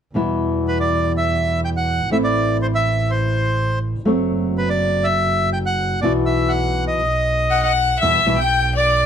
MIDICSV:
0, 0, Header, 1, 5, 480
1, 0, Start_track
1, 0, Key_signature, 1, "minor"
1, 0, Tempo, 490196
1, 141, Time_signature, 4, 2, 24, 8
1, 6380, Tempo, 497100
1, 8836, End_track
2, 0, Start_track
2, 0, Title_t, "Violin"
2, 0, Program_c, 0, 40
2, 7334, Note_on_c, 0, 78, 65
2, 7452, Note_off_c, 0, 78, 0
2, 7458, Note_on_c, 0, 78, 66
2, 7798, Note_off_c, 0, 78, 0
2, 7809, Note_on_c, 0, 76, 68
2, 8152, Note_off_c, 0, 76, 0
2, 8172, Note_on_c, 0, 79, 64
2, 8511, Note_off_c, 0, 79, 0
2, 8546, Note_on_c, 0, 74, 61
2, 8836, Note_off_c, 0, 74, 0
2, 8836, End_track
3, 0, Start_track
3, 0, Title_t, "Bandoneon"
3, 0, Program_c, 1, 23
3, 665, Note_on_c, 1, 71, 58
3, 767, Note_off_c, 1, 71, 0
3, 785, Note_on_c, 1, 74, 58
3, 1100, Note_off_c, 1, 74, 0
3, 1148, Note_on_c, 1, 76, 69
3, 1572, Note_off_c, 1, 76, 0
3, 1614, Note_on_c, 1, 79, 69
3, 1660, Note_off_c, 1, 79, 0
3, 1732, Note_on_c, 1, 78, 67
3, 2052, Note_off_c, 1, 78, 0
3, 2079, Note_on_c, 1, 76, 67
3, 2129, Note_off_c, 1, 76, 0
3, 2192, Note_on_c, 1, 74, 64
3, 2520, Note_off_c, 1, 74, 0
3, 2565, Note_on_c, 1, 72, 58
3, 2613, Note_off_c, 1, 72, 0
3, 2691, Note_on_c, 1, 76, 70
3, 3040, Note_on_c, 1, 72, 58
3, 3044, Note_off_c, 1, 76, 0
3, 3710, Note_off_c, 1, 72, 0
3, 4482, Note_on_c, 1, 71, 66
3, 4594, Note_off_c, 1, 71, 0
3, 4597, Note_on_c, 1, 74, 72
3, 4935, Note_on_c, 1, 76, 82
3, 4958, Note_off_c, 1, 74, 0
3, 5383, Note_off_c, 1, 76, 0
3, 5414, Note_on_c, 1, 79, 74
3, 5469, Note_off_c, 1, 79, 0
3, 5541, Note_on_c, 1, 78, 73
3, 5875, Note_off_c, 1, 78, 0
3, 5890, Note_on_c, 1, 74, 79
3, 5999, Note_off_c, 1, 74, 0
3, 6129, Note_on_c, 1, 76, 70
3, 6352, Note_on_c, 1, 78, 79
3, 6382, Note_off_c, 1, 76, 0
3, 6699, Note_off_c, 1, 78, 0
3, 6727, Note_on_c, 1, 75, 65
3, 7344, Note_on_c, 1, 78, 72
3, 7456, Note_off_c, 1, 78, 0
3, 7470, Note_on_c, 1, 78, 73
3, 7542, Note_off_c, 1, 75, 0
3, 7804, Note_off_c, 1, 78, 0
3, 7826, Note_on_c, 1, 76, 81
3, 8197, Note_off_c, 1, 76, 0
3, 8200, Note_on_c, 1, 79, 78
3, 8526, Note_off_c, 1, 79, 0
3, 8561, Note_on_c, 1, 74, 84
3, 8836, Note_off_c, 1, 74, 0
3, 8836, End_track
4, 0, Start_track
4, 0, Title_t, "Nylon-string guitar"
4, 0, Program_c, 2, 24
4, 138, Note_on_c, 2, 47, 49
4, 146, Note_on_c, 2, 52, 54
4, 153, Note_on_c, 2, 55, 57
4, 156, Note_on_c, 2, 59, 61
4, 160, Note_on_c, 2, 64, 54
4, 2044, Note_off_c, 2, 52, 0
4, 2050, Note_off_c, 2, 47, 0
4, 2056, Note_on_c, 2, 52, 56
4, 2058, Note_off_c, 2, 55, 0
4, 2059, Note_off_c, 2, 59, 0
4, 2061, Note_off_c, 2, 64, 0
4, 2070, Note_on_c, 2, 57, 56
4, 2075, Note_on_c, 2, 60, 57
4, 2078, Note_on_c, 2, 64, 58
4, 3958, Note_off_c, 2, 57, 0
4, 3965, Note_off_c, 2, 52, 0
4, 3969, Note_on_c, 2, 54, 58
4, 3970, Note_on_c, 2, 57, 61
4, 3972, Note_off_c, 2, 60, 0
4, 3976, Note_off_c, 2, 64, 0
4, 3984, Note_on_c, 2, 60, 60
4, 3988, Note_on_c, 2, 66, 68
4, 5885, Note_off_c, 2, 54, 0
4, 5886, Note_off_c, 2, 57, 0
4, 5892, Note_off_c, 2, 60, 0
4, 5892, Note_on_c, 2, 47, 58
4, 5895, Note_off_c, 2, 66, 0
4, 5902, Note_on_c, 2, 52, 62
4, 5904, Note_on_c, 2, 59, 66
4, 5913, Note_on_c, 2, 64, 67
4, 5918, Note_on_c, 2, 66, 76
4, 6847, Note_off_c, 2, 47, 0
4, 6851, Note_off_c, 2, 52, 0
4, 6852, Note_off_c, 2, 59, 0
4, 6857, Note_off_c, 2, 64, 0
4, 6859, Note_off_c, 2, 66, 0
4, 7832, Note_on_c, 2, 47, 47
4, 7832, Note_on_c, 2, 55, 50
4, 7834, Note_on_c, 2, 52, 50
4, 7838, Note_on_c, 2, 64, 52
4, 7842, Note_on_c, 2, 59, 53
4, 7995, Note_off_c, 2, 47, 0
4, 7995, Note_off_c, 2, 55, 0
4, 7997, Note_off_c, 2, 52, 0
4, 7998, Note_off_c, 2, 64, 0
4, 8000, Note_off_c, 2, 59, 0
4, 8063, Note_on_c, 2, 47, 60
4, 8065, Note_on_c, 2, 55, 59
4, 8068, Note_on_c, 2, 52, 62
4, 8070, Note_on_c, 2, 64, 68
4, 8071, Note_on_c, 2, 59, 67
4, 8152, Note_off_c, 2, 47, 0
4, 8153, Note_off_c, 2, 55, 0
4, 8155, Note_off_c, 2, 52, 0
4, 8156, Note_off_c, 2, 59, 0
4, 8156, Note_off_c, 2, 64, 0
4, 8836, End_track
5, 0, Start_track
5, 0, Title_t, "Double bass"
5, 0, Program_c, 3, 43
5, 138, Note_on_c, 3, 40, 57
5, 1963, Note_off_c, 3, 40, 0
5, 2057, Note_on_c, 3, 33, 59
5, 3879, Note_off_c, 3, 33, 0
5, 3975, Note_on_c, 3, 30, 58
5, 5802, Note_off_c, 3, 30, 0
5, 5904, Note_on_c, 3, 35, 62
5, 6814, Note_off_c, 3, 35, 0
5, 6865, Note_on_c, 3, 35, 59
5, 7782, Note_off_c, 3, 35, 0
5, 7830, Note_on_c, 3, 40, 50
5, 8030, Note_off_c, 3, 40, 0
5, 8058, Note_on_c, 3, 35, 79
5, 8836, Note_off_c, 3, 35, 0
5, 8836, End_track
0, 0, End_of_file